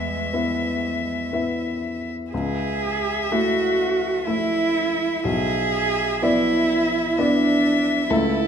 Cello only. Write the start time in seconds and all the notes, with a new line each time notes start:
Already playing: G#3
2.32 G#4
3.32 F#4
4.26 E4
5.24 G#4
6.23 E4
7.18 D4
8.10 E4